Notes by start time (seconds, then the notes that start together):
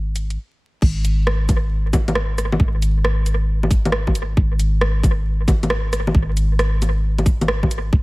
Already playing: G#1
0.16 closed hi-hat, cabasa
0.30 closed hi-hat
0.82 G#1, kick, crash
1.05 closed hi-hat, cabasa
1.27 cross-stick
1.49 kick, closed hi-hat, low bongo, cabasa
1.93 kick, closed hi-hat, low bongo, cabasa
2.08 closed hi-hat, low bongo
2.15 cross-stick
2.38 cross-stick, closed hi-hat, cabasa
2.52 low bongo
2.60 G#1, kick
2.82 closed hi-hat, cabasa
3.05 cross-stick
3.26 closed hi-hat, cabasa
3.63 low bongo
3.71 kick, closed hi-hat, cabasa
3.85 closed hi-hat, low bongo
3.92 cross-stick
4.07 kick, low bongo
4.15 closed hi-hat, cabasa
4.37 G#1, kick
4.59 closed hi-hat, cabasa
4.81 cross-stick
5.03 kick, closed hi-hat, low bongo, cabasa
5.48 kick, closed hi-hat, low bongo, cabasa
5.63 closed hi-hat, low bongo
5.70 cross-stick
5.93 cross-stick, closed hi-hat, cabasa
6.07 low bongo
6.15 G#1, kick
6.37 closed hi-hat, cabasa
6.59 cross-stick, closed hi-hat
6.82 closed hi-hat, low bongo, cabasa
7.18 closed hi-hat, low bongo
7.26 kick, closed hi-hat, cabasa
7.41 closed hi-hat, low bongo
7.48 cross-stick
7.63 kick, low bongo
7.71 closed hi-hat, cabasa
7.93 G#1, kick